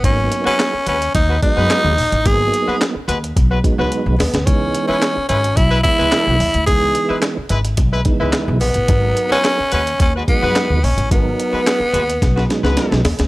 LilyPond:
<<
  \new Staff \with { instrumentName = "Horn section" } { \time 4/4 \key gis \minor \tempo 4 = 108 r8. <gis fis' b'>16 r8 <gis fis' b'>16 r8 <gis fis' b'>16 r16 <gis fis' b'>8. r8 | r8. <gis fis' b'>16 r8 <gis fis' b'>16 r8 <gis fis' b'>16 r16 <gis fis' b'>8. r8 | r8. <gis e' b'>16 r8 <gis e' b'>16 r8 <gis e' b'>16 r16 <gis e' b'>8. r8 | r8. <gis e' b'>16 r8 <gis e' b'>16 r8 <gis e' b'>16 r16 <gis e' b'>8. r8 |
r8. <gis fis' b'>16 r8 <gis fis' b'>16 r8 <gis fis' b'>16 r16 <gis fis' b'>8. r8 | r8. <gis fis' b'>16 r8 <gis fis' b'>16 r8 <gis fis' b'>16 r16 <gis fis' b'>8. r8 | }
  \new Staff \with { instrumentName = "Tenor saxophone" } { \time 4/4 \key gis \minor cis'8. cis'8. cis'8 dis'8 dis'4. | gis'4 r2 r8 b8 | cis'8. cis'8. cis'8 e'8 e'4. | gis'4 r2 r8 b8~ |
b8. cis'8. cis'8 cis'8 b4 cis'8 | b2. r4 | }
  \new Staff \with { instrumentName = "Tonewheel organ" } { \time 4/4 \key gis \minor <fis ais b dis'>4~ <fis ais b dis'>16 r4 r16 <fis gis b dis'>4 r8 | <fis ais b dis'>4~ <fis ais b dis'>16 r4 r16 <fis gis b dis'>4 r8 | <e gis b dis'>4~ <e gis b dis'>16 r4 r16 <e gis b e'>4 r8 | <e gis b dis'>4~ <e gis b dis'>16 r4 r16 <dis e gis b dis'>4 r8 |
<fis b dis' ais'>4~ <fis b dis' ais'>16 r4 r16 <fis gis b dis'>4 r8 | <fis b dis' ais'>4~ <fis b dis' ais'>16 r4 r16 <fis gis b dis'>4 r8 | }
  \new Staff \with { instrumentName = "Upright bass" } { \clef bass \time 4/4 \key gis \minor gis,,8 r4 dis,8 dis,8 r16 fis,16 r16 dis,16 ais,,16 a,,16 | gis,,8 r4 dis,8 b,,8 r16 cis,16 r16 b,,16 dis,16 d,16 | cis,8 r4 gis,,8 b,,8 r16 cis,16 r16 b,,16 dis,16 d,16 | cis,8 r4 gis,,8 b,,8 r16 cis,16 r16 b,,16 ais,,16 a,,16 |
gis,,8 r4 dis,8 dis,8 r16 fis,16 r16 dis,16 ais,,16 a,,16 | gis,,8 r4 dis,8 b,,8 r16 cis,16 r16 b,,16 dis,16 d,16 | }
  \new DrumStaff \with { instrumentName = "Drums" } \drummode { \time 4/4 <hh bd>8 hh8 <hc hh sn>8 hh16 hh16 <hh bd>8 <hh bd>8 <hc hh sn>8 hho16 hh16 | <hh bd>8 hh8 <hc hh sn>8 hh16 hh16 <hh bd>8 <hh bd>8 hh8 <hho sn>16 <hh sn>16 | <hh bd>8 hh8 <hc hh sn>8 hh16 hh16 <hh bd>8 <hh bd>8 <hc hh sn>8 hho16 hh16 | <hh bd>8 hh8 <hc hh sn>8 hh16 hh16 <hh bd>8 <hh bd>8 <hc hh sn>8 hho16 hh16 |
<hh bd>8 hh8 <hc hh sn>8 hh16 hh16 <hh bd>8 <hh bd>8 <hc hh sn>8 hho16 hh16 | <hh bd>8 hh8 <hc hh sn>8 hh16 hh16 <hh bd sn>16 sn16 <hh sn>16 sn16 <hh sn>16 sn16 <hho sn>16 <hh sn>16 | }
>>